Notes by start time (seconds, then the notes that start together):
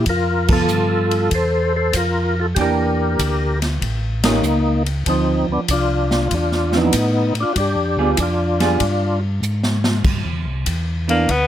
0.06 F2 A#4, kick, ride
0.10 F4
0.48 F3 B3 A4, kick, crash
0.53 F4
0.68 G2, hi-hat pedal
1.11 ride
1.31 E2 A4 C5, kick, ride
1.76 A4 C5
1.93 F2 F4, kick, hi-hat pedal, ride
1.97 A#4
2.40 F4 A4
2.55 E2 E3 A#3 D4 G4, kick, ride
2.61 G4 A#4
3.19 D2, kick, hi-hat pedal, ride
3.62 snare, ride
3.82 A1, kick, ride
4.24 G3 A#3 C#4 D#4, snare, ride
4.43 C#2, hi-hat pedal
4.86 ride
5.06 D2 F3 C4 D#4, kick, ride
5.48 D2 B3
5.53 D4
5.68 C2 D4, kick, hi-hat pedal, ride
5.73 F4
6.11 snare
6.31 E2 D4, kick, ride
6.37 F4
6.52 snare
6.72 D3 F3 C4 E4, snare
6.77 B3 D#4
6.93 A2, kick, hi-hat pedal, ride
7.35 A2, ride
7.40 D4 F4
7.53 G2 F#4, kick, ride
7.58 D4 G4
7.76 F2
7.97 D2 G3 B3 F4 G#4
8.16 F2 D4 E4, kick, hi-hat pedal, ride
8.22 F4
8.60 G3 B3 F4 G#4, snare, ride
8.80 G2, kick, ride
9.42 G#2, hi-hat pedal
9.63 snare
9.84 snare
10.04 G2, kick, crash
10.25 E2
10.45 C2
10.66 E2, kick, hi-hat pedal, ride
11.08 E3 A#3 B3 D4, ride
11.29 D2 B3, kick, ride